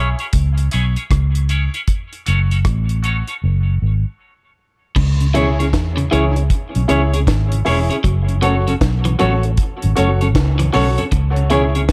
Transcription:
Already playing: fingered electric bass B1, upright piano E4 G#4 C#5
0.19 clean electric guitar C#4 E4 G#4 C#5, closed hi-hat
0.33 fingered electric bass C#2, kick, closed hi-hat
0.58 closed hi-hat
0.71 fingered electric bass B1, clean electric guitar C#4 E4 G#4 C#5, upright piano E4 G#4 C#5, closed hi-hat
0.96 clean electric guitar C#4 E4 G#4 C#5, closed hi-hat
1.11 fingered electric bass C#2, kick, cross-stick, closed hi-hat
1.35 closed hi-hat
1.49 clean electric guitar C#4 E4 G#4 C#5, upright piano E4 G#4 C#5, closed hi-hat
1.74 clean electric guitar C#4 E4 G#4 C#5, closed hi-hat
1.88 kick, closed hi-hat
2.13 closed hi-hat
2.26 fingered electric bass F#1, clean electric guitar C#4 F#4 A4 C#5, upright piano F#4 A4 C#5, closed hi-hat
2.51 clean electric guitar C#4 F#4 A4 C#5, closed hi-hat
2.65 fingered electric bass A1, kick, cross-stick, closed hi-hat
2.89 closed hi-hat
3.02 clean electric guitar C#4 F#4 A4 C#5, upright piano F#4 A4 C#5, closed hi-hat
3.27 clean electric guitar C#4 F#4 A4 C#5, closed hi-hat
3.44 fingered electric bass F#1
3.82 fingered electric bass G#1
4.96 fingered electric bass C#2, clean electric guitar C#3, kick, crash
5.20 tonewheel organ C#3, closed hi-hat
5.34 clean electric guitar B2 C#4 E4 G#4 C#5, tonewheel organ E3 G#3 C#4, upright piano E4 G#4 C#5, closed hi-hat
5.59 tonewheel organ C#3, clean electric guitar C#4 E4 G#4 C#5, closed hi-hat
5.73 fingered electric bass E2, kick, snare, closed hi-hat
5.97 clean electric guitar C#3, tonewheel organ C#3, closed hi-hat
6.11 fingered electric bass C#2, clean electric guitar E3 C#4 E4 G#4 C#5, tonewheel organ E3 G#3 C#4, upright piano E4 G#4 C#5, closed hi-hat
6.36 tonewheel organ G#3 C#4, closed hi-hat
6.50 kick, closed hi-hat
6.75 fingered electric bass B1, tonewheel organ C#3, closed hi-hat
6.88 fingered electric bass C#2, tonewheel organ E3 G#3 C#4, clean electric guitar C#4 E4 G#4 C#5, upright piano E4 G#4 C#5, closed hi-hat
7.13 tonewheel organ C#3, clean electric guitar C#4 E4 G#4 C#5, closed hi-hat
7.27 fingered electric bass G#1, kick, snare, closed hi-hat
7.52 tonewheel organ C#3, closed hi-hat
7.65 fingered electric bass E1, tonewheel organ E3 G#3 C#4, clean electric guitar C#4 E4 G#4 C#5, upright piano E4 G#4 C#5, open hi-hat
7.90 tonewheel organ C#3, clean electric guitar C#4 E4 G#4 C#5, closed hi-hat
8.04 fingered electric bass F#1, clean electric guitar F#3, kick, closed hi-hat
8.29 tonewheel organ F#2 C#3, closed hi-hat
8.42 clean electric guitar C#3 C#4 F#4 A4 C#5, tonewheel organ F#3 A3 C#4, upright piano F#4 A4 C#5, closed hi-hat
8.67 tonewheel organ F#2 C#3, clean electric guitar C#4 F#4 A4 C#5, closed hi-hat
8.81 fingered electric bass B1, kick, snare, closed hi-hat
9.05 tonewheel organ F#2 C#3, clean electric guitar E3, closed hi-hat
9.19 fingered electric bass A1, clean electric guitar F#3 C#4 F#4 A4 C#5, tonewheel organ F#3 A3 C#4, upright piano F#4 A4 C#5, closed hi-hat
9.43 tonewheel organ A3 C#4, closed hi-hat
9.57 kick, closed hi-hat
9.82 fingered electric bass G#1, tonewheel organ F#2 C#3, closed hi-hat
9.96 fingered electric bass F#1, tonewheel organ F#3 A3 C#4, clean electric guitar C#4 F#4 A4 C#5, upright piano F#4 A4 C#5, closed hi-hat
10.21 tonewheel organ F#2 C#3, clean electric guitar C#4 F#4 A4 C#5, closed hi-hat
10.35 fingered electric bass C#2, kick, snare, closed hi-hat
10.59 tonewheel organ F#2 C#3, clean electric guitar E3, closed hi-hat
10.73 fingered electric bass B1, clean electric guitar C#3 C#4 F#4 A4 C#5, tonewheel organ F#3 A3 C#4, upright piano F#4 A4 C#5, open hi-hat
10.98 tonewheel organ F#2 C#3, clean electric guitar C#4 F#4 A4 C#5, closed hi-hat
11.12 fingered electric bass C#2, clean electric guitar C#3, kick, closed hi-hat
11.36 tonewheel organ C#3, closed hi-hat
11.50 clean electric guitar B2 C#4 E4 G#4 C#5, tonewheel organ E3 G#3 C#4, upright piano E4 G#4 C#5, closed hi-hat
11.75 tonewheel organ C#3, clean electric guitar C#4 E4 G#4 C#5, closed hi-hat
11.89 kick, snare, closed hi-hat

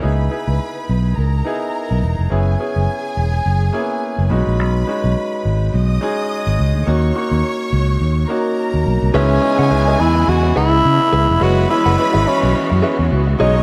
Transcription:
0.01 fingered electric bass C#2, grand piano B3 D#4 E4 G#4, violin section B4 B5
0.30 grand piano B3 D#4 E4 G#4
0.48 fingered electric bass C#2
0.89 fingered electric bass B1
1.16 fingered electric bass C#2, violin section A#4 A#5
1.45 grand piano B3 D#4 E4 G#4
1.91 fingered electric bass B1
2.03 fingered electric bass E1
2.19 fingered electric bass F1
2.30 fingered electric bass F#1, grand piano B3 C#4 E4 G#4, violin section G#4 G#5
2.59 grand piano B3 C#4 E4 G#4
2.76 fingered electric bass F#1
3.17 fingered electric bass E1
3.46 fingered electric bass F#1
3.73 grand piano A#3 C#4 E4 G#4
3.79 grand piano B3
4.19 fingered electric bass F#1
4.30 fingered electric bass B1, grand piano G#3 C#4 D#4 F#4, violin section B4 B5
4.47 fingered electric bass A#1
4.59 fingered electric bass B1
4.87 grand piano G#3 C#4 D#4 F#4
5.04 fingered electric bass B1
5.45 fingered electric bass G#1
5.72 fingered electric bass B1, violin section D#5 D#6
6.01 grand piano G#3 C#4 D#4 G#4
6.47 fingered electric bass G#1
6.59 fingered electric bass C#2
6.75 fingered electric bass D2
6.86 fingered electric bass D#2, grand piano A#3 C#4 D#4 F#4, violin section C#5 C#6
7.15 grand piano A#3 C#4 D#4 F#4
7.31 fingered electric bass D#2
7.73 fingered electric bass C#2
8.00 fingered electric bass D#2
8.28 grand piano A#3 C#4 D#4 F#4, violin section A#4 A#5
8.74 fingered electric bass D#2
8.86 fingered electric bass B1
9.03 fingered electric bass C2
9.14 fingered electric bass C#2, string section C#3 E3 G#3 B3, grand piano G#3 B3 D#4 E4, tenor saxophone C#4, clean electric guitar G#4 B4 E5, violin section G#4 G#5
9.42 grand piano G#3 B3 D#4 E4
9.59 fingered electric bass C#3, clean electric guitar G#4 B4 F#5
9.71 fingered electric bass C#2, grand piano G#3 B3 D#4 E4, muted clean electric guitar stroke
9.87 clean electric guitar G#4 B4 E5
9.99 fingered electric bass E2, tenor saxophone E4, muted clean electric guitar stroke
10.15 muted clean electric guitar stroke
10.28 fingered electric bass E2, tenor saxophone F#4
10.43 muted clean electric guitar stroke
10.56 fingered electric bass C#2, tenor saxophone E4, clean electric guitar G#4 B4 F#5
10.72 muted clean electric guitar stroke
10.84 fingered electric bass C#3, muted clean electric guitar stroke
11.01 muted clean electric guitar stroke
11.13 fingered electric bass C#2, clean electric guitar G#4 B4 E5
11.29 fingered electric bass F1, muted clean electric guitar stroke
11.40 fingered electric bass F#1, string section E3 F#4, grand piano G#3 B3 C#4 E4, tenor saxophone F#4, clean electric guitar G#4 B4 E5, violin section B4 B5
11.69 grand piano G#3 B3 C#4 E4, tenor saxophone E4, muted clean electric guitar stroke
11.86 fingered electric bass F#1, clean electric guitar G#4 B4 F#5
11.98 grand piano G#3 B3 C#4 E4
12.14 fingered electric bass G#1, clean electric guitar G#4 B4 E5
12.26 tenor saxophone C#4, muted clean electric guitar stroke
12.42 fingered electric bass B1, muted clean electric guitar stroke
12.55 tenor saxophone C#4
12.70 fingered electric bass F#2, muted clean electric guitar stroke
12.82 clean electric guitar G#4 B4 E5
12.99 fingered electric bass E2
13.11 fingered electric bass C#2, muted clean electric guitar stroke
13.27 muted clean electric guitar stroke
13.38 fingered electric bass B1, string section C#3 D#5, grand piano F#3 G#3 C#4 D#4, clean electric guitar G#4 C#5 D#5, violin section C#5 C#6
13.56 clean electric guitar G#4 C#5 D#5

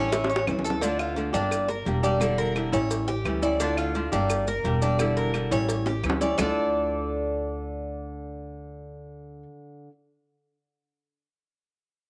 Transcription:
Already playing: upright bass A1, nylon-string guitar G3 D4 E4, cuban tres C#4 C#5
0.12 cuban tres E4, muted nylon-string guitar stroke, cowbell, high bongo, maracas
0.24 high bongo
0.30 cuban tres C#5, maracas
0.36 high bongo
0.47 upright bass D2, nylon-string guitar E3 G3 C#4 E4, cowbell, low bongo, claves, maracas
0.59 low bongo
0.65 cuban tres A4, maracas
0.70 low bongo
0.81 nylon-string guitar D3 A3 D4 F4, cuban tres D4, cowbell, maracas
0.99 cuban tres F4, claves, maracas
1.16 nylon-string guitar D3 A3 D4 F4, cowbell, maracas
1.33 upright bass G1, nylon-string guitar G3 A#3 D4 G4, cuban tres D4, cowbell, maracas
1.51 cowbell, claves, maracas
1.68 cuban tres A#4, muted nylon-string guitar stroke, maracas
1.85 upright bass E1, nylon-string guitar G3 A#3 D4 G4, cowbell, maracas
2.03 nylon-string guitar G3 A#3 D4 G4, cuban tres D5, cowbell, maracas
2.20 nylon-string guitar D3 G3 D4 E4, cowbell, claves, maracas
2.38 cuban tres A#4, maracas
2.55 nylon-string guitar D3 G3 D4 E4, cowbell, claves, maracas
2.72 upright bass A1, nylon-string guitar G3 C#4 E4, cuban tres C#5, cowbell, maracas
2.91 cowbell, maracas
3.08 cuban tres G4, muted nylon-string guitar stroke, maracas
3.25 upright bass D2, nylon-string guitar E3 G3 C#4 E4, cowbell, claves, maracas
3.42 nylon-string guitar G3 C#4 E4, cuban tres D5, maracas
3.60 nylon-string guitar D3 A3 D4 F4, cuban tres D4, cowbell, maracas
3.77 cuban tres F4, claves, maracas
3.94 nylon-string guitar D3 A3 D4 F4, cowbell, maracas
4.12 upright bass G1, nylon-string guitar G3 A#3 D4 G4, cuban tres D4, cowbell, maracas
4.30 cowbell, claves, maracas
4.47 cuban tres A#4, muted nylon-string guitar stroke, maracas
4.64 upright bass E1, nylon-string guitar G3 A#3 D4 G4, cowbell, maracas
4.82 nylon-string guitar G3 A#3 D4 G4, cuban tres D5, cowbell, maracas
4.99 nylon-string guitar D3 G3 D4 E4, cowbell, claves, maracas
5.17 cuban tres A#4, maracas
5.34 nylon-string guitar D3 G3 D4 E4, cowbell, claves, maracas
5.51 upright bass A1, nylon-string guitar G3 C#4 E4, cuban tres C#5, cowbell, maracas
5.69 cowbell, maracas
5.86 cuban tres G4, muted nylon-string guitar stroke, high bongo, maracas
6.04 upright bass D2, nylon-string guitar E3 G3 C#4 E4, cowbell, claves, maracas
6.10 low bongo
6.21 nylon-string guitar G3 C#4 E4, cuban tres D5, low bongo, maracas
6.38 upright bass D2, nylon-string guitar D3 A3 D4, cuban tres D4 A4 D5, low bongo, claves, maracas
6.42 nylon-string guitar F4

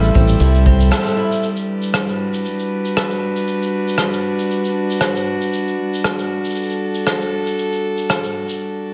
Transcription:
Already playing: steel-string acoustic guitar A2 C4 E4 A4, string quartet G3 E4 A4 C5
0.03 shaker
0.14 fingered electric bass A1, steel-string acoustic guitar C4, kick
0.28 shaker
0.40 fingered electric bass C2, steel-string acoustic guitar E4, shaker
0.54 shaker
0.66 steel-string acoustic guitar C4, kick
0.80 shaker
0.91 steel-string acoustic guitar A4, cross-stick, shaker
1.06 shaker
1.17 steel-string acoustic guitar E4
1.32 shaker
1.43 shaker
1.56 string quartet D4, shaker
1.68 string quartet B4
1.82 shaker
1.94 cross-stick, shaker
2.01 string quartet F#4
2.09 shaker
2.34 shaker
2.45 shaker
2.59 shaker
2.85 shaker
2.97 cross-stick, shaker
3.10 shaker
3.36 shaker
3.48 shaker
3.62 shaker
3.88 shaker
3.98 cross-stick, shaker
4.13 shaker
4.39 shaker
4.51 shaker
4.65 shaker
4.91 shaker
5.01 cross-stick, shaker
5.16 shaker
5.42 shaker
5.53 shaker
5.67 shaker
5.94 shaker
6.04 cross-stick, shaker
6.19 shaker
6.45 shaker
6.50 string quartet A4, shaker
6.55 shaker
6.63 shaker
6.70 shaker
6.95 shaker
7.07 cross-stick, shaker
7.21 shaker
7.47 shaker
7.58 shaker
7.72 shaker
7.98 shaker
8.09 cross-stick, shaker
8.23 shaker
8.49 shaker

